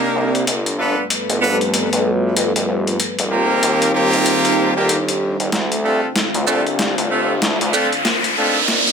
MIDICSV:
0, 0, Header, 1, 6, 480
1, 0, Start_track
1, 0, Tempo, 631579
1, 362, Time_signature, 4, 2, 24, 8
1, 6779, End_track
2, 0, Start_track
2, 0, Title_t, "Analog synth pad"
2, 0, Program_c, 0, 89
2, 0, Note_on_c, 0, 60, 79
2, 0, Note_on_c, 0, 70, 73
2, 0, Note_on_c, 0, 74, 73
2, 343, Note_off_c, 0, 74, 0
2, 344, Note_off_c, 0, 60, 0
2, 345, Note_off_c, 0, 70, 0
2, 357, Note_on_c, 0, 55, 80
2, 358, Note_on_c, 0, 69, 72
2, 358, Note_on_c, 0, 71, 88
2, 361, Note_on_c, 0, 65, 74
2, 2260, Note_off_c, 0, 55, 0
2, 2261, Note_off_c, 0, 69, 0
2, 2261, Note_off_c, 0, 71, 0
2, 2262, Note_off_c, 0, 65, 0
2, 2280, Note_on_c, 0, 63, 81
2, 2281, Note_on_c, 0, 72, 88
2, 2282, Note_on_c, 0, 67, 73
2, 4182, Note_off_c, 0, 63, 0
2, 4182, Note_off_c, 0, 72, 0
2, 4183, Note_off_c, 0, 67, 0
2, 4198, Note_on_c, 0, 72, 73
2, 4198, Note_on_c, 0, 77, 87
2, 4199, Note_on_c, 0, 62, 81
2, 6101, Note_off_c, 0, 62, 0
2, 6101, Note_off_c, 0, 72, 0
2, 6101, Note_off_c, 0, 77, 0
2, 6119, Note_on_c, 0, 74, 71
2, 6121, Note_on_c, 0, 70, 73
2, 6123, Note_on_c, 0, 60, 81
2, 6125, Note_on_c, 0, 75, 88
2, 6779, Note_off_c, 0, 60, 0
2, 6779, Note_off_c, 0, 70, 0
2, 6779, Note_off_c, 0, 74, 0
2, 6779, Note_off_c, 0, 75, 0
2, 6779, End_track
3, 0, Start_track
3, 0, Title_t, "Horn section"
3, 0, Program_c, 1, 61
3, 0, Note_on_c, 1, 58, 107
3, 0, Note_on_c, 1, 62, 106
3, 0, Note_on_c, 1, 63, 96
3, 0, Note_on_c, 1, 67, 95
3, 0, Note_on_c, 1, 70, 116
3, 348, Note_off_c, 1, 62, 0
3, 349, Note_off_c, 1, 58, 0
3, 349, Note_off_c, 1, 63, 0
3, 349, Note_off_c, 1, 67, 0
3, 349, Note_off_c, 1, 70, 0
3, 600, Note_on_c, 1, 65, 68
3, 600, Note_on_c, 1, 69, 67
3, 601, Note_on_c, 1, 59, 74
3, 601, Note_on_c, 1, 62, 75
3, 601, Note_on_c, 1, 71, 80
3, 778, Note_off_c, 1, 65, 0
3, 778, Note_off_c, 1, 69, 0
3, 779, Note_off_c, 1, 59, 0
3, 779, Note_off_c, 1, 62, 0
3, 779, Note_off_c, 1, 71, 0
3, 1077, Note_on_c, 1, 59, 94
3, 1077, Note_on_c, 1, 69, 86
3, 1077, Note_on_c, 1, 71, 102
3, 1078, Note_on_c, 1, 65, 82
3, 1079, Note_on_c, 1, 62, 93
3, 1201, Note_off_c, 1, 59, 0
3, 1201, Note_off_c, 1, 65, 0
3, 1201, Note_off_c, 1, 69, 0
3, 1201, Note_off_c, 1, 71, 0
3, 1202, Note_off_c, 1, 62, 0
3, 2517, Note_on_c, 1, 67, 70
3, 2518, Note_on_c, 1, 60, 76
3, 2519, Note_on_c, 1, 58, 79
3, 2519, Note_on_c, 1, 65, 74
3, 2519, Note_on_c, 1, 70, 85
3, 2977, Note_off_c, 1, 60, 0
3, 2977, Note_off_c, 1, 67, 0
3, 2978, Note_off_c, 1, 58, 0
3, 2978, Note_off_c, 1, 65, 0
3, 2978, Note_off_c, 1, 70, 0
3, 2996, Note_on_c, 1, 65, 89
3, 2996, Note_on_c, 1, 67, 90
3, 2998, Note_on_c, 1, 58, 99
3, 2998, Note_on_c, 1, 60, 99
3, 2998, Note_on_c, 1, 70, 108
3, 3595, Note_off_c, 1, 65, 0
3, 3595, Note_off_c, 1, 67, 0
3, 3596, Note_off_c, 1, 58, 0
3, 3596, Note_off_c, 1, 60, 0
3, 3596, Note_off_c, 1, 70, 0
3, 3622, Note_on_c, 1, 67, 71
3, 3623, Note_on_c, 1, 58, 77
3, 3623, Note_on_c, 1, 60, 76
3, 3623, Note_on_c, 1, 65, 68
3, 3623, Note_on_c, 1, 70, 84
3, 3768, Note_off_c, 1, 67, 0
3, 3769, Note_off_c, 1, 58, 0
3, 3769, Note_off_c, 1, 60, 0
3, 3769, Note_off_c, 1, 65, 0
3, 3769, Note_off_c, 1, 70, 0
3, 4437, Note_on_c, 1, 62, 61
3, 4439, Note_on_c, 1, 57, 68
3, 4439, Note_on_c, 1, 65, 61
3, 4439, Note_on_c, 1, 69, 74
3, 4440, Note_on_c, 1, 60, 68
3, 4617, Note_off_c, 1, 62, 0
3, 4618, Note_off_c, 1, 57, 0
3, 4618, Note_off_c, 1, 60, 0
3, 4618, Note_off_c, 1, 65, 0
3, 4618, Note_off_c, 1, 69, 0
3, 4918, Note_on_c, 1, 60, 86
3, 4918, Note_on_c, 1, 62, 78
3, 4919, Note_on_c, 1, 65, 79
3, 4920, Note_on_c, 1, 57, 85
3, 4920, Note_on_c, 1, 69, 93
3, 5042, Note_off_c, 1, 57, 0
3, 5042, Note_off_c, 1, 60, 0
3, 5042, Note_off_c, 1, 62, 0
3, 5042, Note_off_c, 1, 65, 0
3, 5042, Note_off_c, 1, 69, 0
3, 5398, Note_on_c, 1, 65, 65
3, 5399, Note_on_c, 1, 57, 70
3, 5399, Note_on_c, 1, 60, 71
3, 5399, Note_on_c, 1, 62, 64
3, 5399, Note_on_c, 1, 69, 76
3, 5577, Note_off_c, 1, 65, 0
3, 5578, Note_off_c, 1, 57, 0
3, 5578, Note_off_c, 1, 60, 0
3, 5578, Note_off_c, 1, 62, 0
3, 5578, Note_off_c, 1, 69, 0
3, 5878, Note_on_c, 1, 57, 89
3, 5878, Note_on_c, 1, 69, 97
3, 5879, Note_on_c, 1, 60, 90
3, 5879, Note_on_c, 1, 62, 80
3, 5879, Note_on_c, 1, 65, 82
3, 6001, Note_off_c, 1, 57, 0
3, 6001, Note_off_c, 1, 69, 0
3, 6002, Note_off_c, 1, 60, 0
3, 6002, Note_off_c, 1, 62, 0
3, 6002, Note_off_c, 1, 65, 0
3, 6360, Note_on_c, 1, 57, 72
3, 6360, Note_on_c, 1, 69, 78
3, 6361, Note_on_c, 1, 60, 70
3, 6362, Note_on_c, 1, 65, 66
3, 6363, Note_on_c, 1, 62, 65
3, 6538, Note_off_c, 1, 57, 0
3, 6538, Note_off_c, 1, 69, 0
3, 6539, Note_off_c, 1, 60, 0
3, 6539, Note_off_c, 1, 65, 0
3, 6540, Note_off_c, 1, 62, 0
3, 6779, End_track
4, 0, Start_track
4, 0, Title_t, "Analog synth bass"
4, 0, Program_c, 2, 38
4, 120, Note_on_c, 2, 36, 98
4, 346, Note_off_c, 2, 36, 0
4, 363, Note_on_c, 2, 31, 98
4, 725, Note_off_c, 2, 31, 0
4, 986, Note_on_c, 2, 31, 94
4, 1066, Note_off_c, 2, 31, 0
4, 1081, Note_on_c, 2, 29, 97
4, 1443, Note_off_c, 2, 29, 0
4, 1467, Note_on_c, 2, 35, 99
4, 1787, Note_off_c, 2, 35, 0
4, 1801, Note_on_c, 2, 31, 97
4, 1923, Note_off_c, 2, 31, 0
4, 1946, Note_on_c, 2, 31, 97
4, 2026, Note_off_c, 2, 31, 0
4, 2041, Note_on_c, 2, 29, 98
4, 2266, Note_off_c, 2, 29, 0
4, 2429, Note_on_c, 2, 27, 99
4, 2748, Note_off_c, 2, 27, 0
4, 2760, Note_on_c, 2, 39, 95
4, 3123, Note_off_c, 2, 39, 0
4, 3147, Note_on_c, 2, 27, 93
4, 3604, Note_off_c, 2, 27, 0
4, 3625, Note_on_c, 2, 31, 94
4, 4083, Note_off_c, 2, 31, 0
4, 4105, Note_on_c, 2, 31, 94
4, 4186, Note_off_c, 2, 31, 0
4, 4200, Note_on_c, 2, 38, 101
4, 4563, Note_off_c, 2, 38, 0
4, 4825, Note_on_c, 2, 38, 96
4, 4906, Note_off_c, 2, 38, 0
4, 4918, Note_on_c, 2, 36, 95
4, 5282, Note_off_c, 2, 36, 0
4, 5306, Note_on_c, 2, 31, 99
4, 5626, Note_off_c, 2, 31, 0
4, 5644, Note_on_c, 2, 38, 100
4, 5765, Note_off_c, 2, 38, 0
4, 5788, Note_on_c, 2, 38, 99
4, 5867, Note_off_c, 2, 38, 0
4, 6779, End_track
5, 0, Start_track
5, 0, Title_t, "Riser"
5, 0, Program_c, 3, 103
5, 4199, Note_on_c, 3, 60, 83
5, 6779, Note_off_c, 3, 60, 0
5, 6779, End_track
6, 0, Start_track
6, 0, Title_t, "Drums"
6, 265, Note_on_c, 9, 42, 38
6, 341, Note_off_c, 9, 42, 0
6, 360, Note_on_c, 9, 42, 78
6, 436, Note_off_c, 9, 42, 0
6, 504, Note_on_c, 9, 42, 52
6, 580, Note_off_c, 9, 42, 0
6, 838, Note_on_c, 9, 42, 78
6, 914, Note_off_c, 9, 42, 0
6, 985, Note_on_c, 9, 42, 54
6, 1061, Note_off_c, 9, 42, 0
6, 1225, Note_on_c, 9, 42, 38
6, 1301, Note_off_c, 9, 42, 0
6, 1320, Note_on_c, 9, 42, 81
6, 1396, Note_off_c, 9, 42, 0
6, 1464, Note_on_c, 9, 42, 53
6, 1540, Note_off_c, 9, 42, 0
6, 1797, Note_on_c, 9, 42, 82
6, 1873, Note_off_c, 9, 42, 0
6, 1945, Note_on_c, 9, 42, 54
6, 2021, Note_off_c, 9, 42, 0
6, 2184, Note_on_c, 9, 42, 37
6, 2260, Note_off_c, 9, 42, 0
6, 2277, Note_on_c, 9, 42, 78
6, 2353, Note_off_c, 9, 42, 0
6, 2421, Note_on_c, 9, 42, 52
6, 2497, Note_off_c, 9, 42, 0
6, 2757, Note_on_c, 9, 42, 76
6, 2833, Note_off_c, 9, 42, 0
6, 2902, Note_on_c, 9, 42, 52
6, 2978, Note_off_c, 9, 42, 0
6, 3141, Note_on_c, 9, 42, 36
6, 3217, Note_off_c, 9, 42, 0
6, 3236, Note_on_c, 9, 42, 79
6, 3312, Note_off_c, 9, 42, 0
6, 3381, Note_on_c, 9, 42, 50
6, 3457, Note_off_c, 9, 42, 0
6, 3718, Note_on_c, 9, 42, 78
6, 3794, Note_off_c, 9, 42, 0
6, 3864, Note_on_c, 9, 42, 53
6, 3940, Note_off_c, 9, 42, 0
6, 4103, Note_on_c, 9, 42, 37
6, 4179, Note_off_c, 9, 42, 0
6, 4198, Note_on_c, 9, 38, 49
6, 4198, Note_on_c, 9, 42, 75
6, 4274, Note_off_c, 9, 38, 0
6, 4274, Note_off_c, 9, 42, 0
6, 4344, Note_on_c, 9, 42, 50
6, 4420, Note_off_c, 9, 42, 0
6, 4678, Note_on_c, 9, 38, 52
6, 4678, Note_on_c, 9, 42, 76
6, 4754, Note_off_c, 9, 38, 0
6, 4754, Note_off_c, 9, 42, 0
6, 4822, Note_on_c, 9, 42, 51
6, 4898, Note_off_c, 9, 42, 0
6, 4920, Note_on_c, 9, 82, 63
6, 4996, Note_off_c, 9, 82, 0
6, 5066, Note_on_c, 9, 42, 35
6, 5142, Note_off_c, 9, 42, 0
6, 5159, Note_on_c, 9, 38, 53
6, 5159, Note_on_c, 9, 42, 75
6, 5235, Note_off_c, 9, 38, 0
6, 5235, Note_off_c, 9, 42, 0
6, 5306, Note_on_c, 9, 42, 51
6, 5382, Note_off_c, 9, 42, 0
6, 5638, Note_on_c, 9, 38, 56
6, 5638, Note_on_c, 9, 42, 78
6, 5714, Note_off_c, 9, 38, 0
6, 5714, Note_off_c, 9, 42, 0
6, 5784, Note_on_c, 9, 42, 51
6, 5860, Note_off_c, 9, 42, 0
6, 5879, Note_on_c, 9, 82, 63
6, 5955, Note_off_c, 9, 82, 0
6, 6023, Note_on_c, 9, 42, 36
6, 6099, Note_off_c, 9, 42, 0
6, 6117, Note_on_c, 9, 38, 60
6, 6117, Note_on_c, 9, 42, 76
6, 6193, Note_off_c, 9, 38, 0
6, 6193, Note_off_c, 9, 42, 0
6, 6264, Note_on_c, 9, 42, 51
6, 6340, Note_off_c, 9, 42, 0
6, 6598, Note_on_c, 9, 38, 61
6, 6598, Note_on_c, 9, 42, 75
6, 6674, Note_off_c, 9, 38, 0
6, 6674, Note_off_c, 9, 42, 0
6, 6744, Note_on_c, 9, 42, 51
6, 6779, Note_off_c, 9, 42, 0
6, 6779, End_track
0, 0, End_of_file